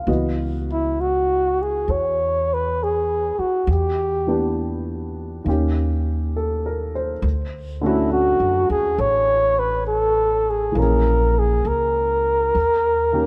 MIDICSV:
0, 0, Header, 1, 5, 480
1, 0, Start_track
1, 0, Tempo, 898204
1, 40, Time_signature, 4, 2, 24, 8
1, 2440, Tempo, 887574
1, 7144, End_track
2, 0, Start_track
2, 0, Title_t, "Flugelhorn"
2, 0, Program_c, 0, 56
2, 386, Note_on_c, 0, 64, 64
2, 538, Note_on_c, 0, 66, 72
2, 546, Note_off_c, 0, 64, 0
2, 867, Note_on_c, 0, 68, 71
2, 875, Note_off_c, 0, 66, 0
2, 1020, Note_on_c, 0, 73, 85
2, 1029, Note_off_c, 0, 68, 0
2, 1356, Note_on_c, 0, 71, 83
2, 1364, Note_off_c, 0, 73, 0
2, 1514, Note_on_c, 0, 68, 79
2, 1522, Note_off_c, 0, 71, 0
2, 1813, Note_on_c, 0, 66, 67
2, 1821, Note_off_c, 0, 68, 0
2, 1967, Note_off_c, 0, 66, 0
2, 1982, Note_on_c, 0, 67, 58
2, 2429, Note_off_c, 0, 67, 0
2, 4226, Note_on_c, 0, 64, 66
2, 4360, Note_off_c, 0, 64, 0
2, 4363, Note_on_c, 0, 66, 80
2, 4660, Note_off_c, 0, 66, 0
2, 4680, Note_on_c, 0, 68, 81
2, 4838, Note_on_c, 0, 73, 89
2, 4846, Note_off_c, 0, 68, 0
2, 5157, Note_on_c, 0, 71, 84
2, 5165, Note_off_c, 0, 73, 0
2, 5306, Note_off_c, 0, 71, 0
2, 5309, Note_on_c, 0, 69, 84
2, 5648, Note_on_c, 0, 68, 70
2, 5656, Note_off_c, 0, 69, 0
2, 5804, Note_on_c, 0, 70, 73
2, 5812, Note_off_c, 0, 68, 0
2, 6131, Note_on_c, 0, 68, 69
2, 6139, Note_off_c, 0, 70, 0
2, 6284, Note_on_c, 0, 70, 76
2, 6292, Note_off_c, 0, 68, 0
2, 7144, Note_off_c, 0, 70, 0
2, 7144, End_track
3, 0, Start_track
3, 0, Title_t, "Grand piano"
3, 0, Program_c, 1, 0
3, 0, Control_c, 1, 64, 127
3, 0, Note_on_c, 1, 77, 37
3, 38, Note_on_c, 1, 52, 39
3, 42, Note_on_c, 1, 59, 35
3, 42, Note_on_c, 1, 66, 40
3, 47, Note_on_c, 1, 75, 35
3, 48, Control_c, 1, 64, 0
3, 135, Note_off_c, 1, 77, 0
3, 141, Control_c, 1, 64, 127
3, 1963, Note_off_c, 1, 52, 0
3, 1964, Note_off_c, 1, 59, 0
3, 1965, Note_off_c, 1, 66, 0
3, 1967, Note_off_c, 1, 75, 0
3, 1970, Control_c, 1, 64, 0
3, 2069, Control_c, 1, 64, 127
3, 2282, Note_on_c, 1, 52, 38
3, 2289, Note_on_c, 1, 59, 38
3, 2291, Note_on_c, 1, 62, 39
3, 2293, Note_on_c, 1, 67, 42
3, 2915, Note_on_c, 1, 51, 42
3, 2921, Note_off_c, 1, 52, 0
3, 2922, Note_on_c, 1, 58, 36
3, 2925, Note_off_c, 1, 59, 0
3, 2926, Note_off_c, 1, 62, 0
3, 2927, Note_off_c, 1, 67, 0
3, 2930, Control_c, 1, 64, 0
3, 2935, Note_on_c, 1, 61, 38
3, 2941, Note_on_c, 1, 67, 48
3, 3033, Control_c, 1, 64, 127
3, 3413, Note_on_c, 1, 69, 39
3, 3572, Note_on_c, 1, 70, 41
3, 3708, Note_off_c, 1, 69, 0
3, 3731, Note_on_c, 1, 72, 42
3, 3816, Note_off_c, 1, 70, 0
3, 3879, Note_off_c, 1, 51, 0
3, 3883, Note_off_c, 1, 58, 0
3, 3889, Note_off_c, 1, 61, 0
3, 3891, Control_c, 1, 64, 0
3, 3892, Note_off_c, 1, 67, 0
3, 3975, Note_off_c, 1, 72, 0
3, 3988, Control_c, 1, 64, 127
3, 4197, Note_on_c, 1, 50, 50
3, 4207, Note_on_c, 1, 57, 45
3, 4213, Note_on_c, 1, 61, 44
3, 4224, Note_on_c, 1, 66, 55
3, 5768, Note_on_c, 1, 52, 45
3, 5784, Note_on_c, 1, 58, 41
3, 5793, Note_off_c, 1, 50, 0
3, 5794, Note_off_c, 1, 61, 0
3, 5798, Note_off_c, 1, 57, 0
3, 5801, Control_c, 1, 64, 0
3, 5803, Note_on_c, 1, 61, 40
3, 5806, Note_off_c, 1, 66, 0
3, 5827, Note_on_c, 1, 68, 48
3, 5904, Control_c, 1, 64, 127
3, 6742, Note_off_c, 1, 52, 0
3, 6751, Note_off_c, 1, 58, 0
3, 6760, Note_off_c, 1, 61, 0
3, 6763, Control_c, 1, 64, 0
3, 6772, Note_off_c, 1, 68, 0
3, 6844, Control_c, 1, 64, 127
3, 7070, Note_on_c, 1, 51, 39
3, 7070, Note_on_c, 1, 58, 37
3, 7078, Note_on_c, 1, 61, 37
3, 7078, Note_on_c, 1, 67, 42
3, 7144, Note_off_c, 1, 51, 0
3, 7144, Note_off_c, 1, 58, 0
3, 7144, Note_off_c, 1, 61, 0
3, 7144, Note_off_c, 1, 67, 0
3, 7144, End_track
4, 0, Start_track
4, 0, Title_t, "Upright bass"
4, 0, Program_c, 2, 32
4, 36, Note_on_c, 2, 37, 66
4, 982, Note_off_c, 2, 37, 0
4, 1004, Note_on_c, 2, 40, 58
4, 1784, Note_off_c, 2, 40, 0
4, 1962, Note_on_c, 2, 40, 69
4, 2900, Note_off_c, 2, 40, 0
4, 2922, Note_on_c, 2, 39, 61
4, 3861, Note_off_c, 2, 39, 0
4, 3877, Note_on_c, 2, 38, 70
4, 4495, Note_off_c, 2, 38, 0
4, 4512, Note_on_c, 2, 42, 54
4, 4664, Note_off_c, 2, 42, 0
4, 4674, Note_on_c, 2, 39, 60
4, 4825, Note_off_c, 2, 39, 0
4, 4829, Note_on_c, 2, 33, 67
4, 5769, Note_off_c, 2, 33, 0
4, 5786, Note_on_c, 2, 34, 67
4, 6249, Note_off_c, 2, 34, 0
4, 6269, Note_on_c, 2, 37, 62
4, 6731, Note_off_c, 2, 37, 0
4, 6756, Note_on_c, 2, 39, 60
4, 7144, Note_off_c, 2, 39, 0
4, 7144, End_track
5, 0, Start_track
5, 0, Title_t, "Muted upright bass strokes"
5, 1811, Note_on_c, 9, 29, 31
5, 1864, Note_off_c, 9, 29, 0
5, 7144, End_track
0, 0, End_of_file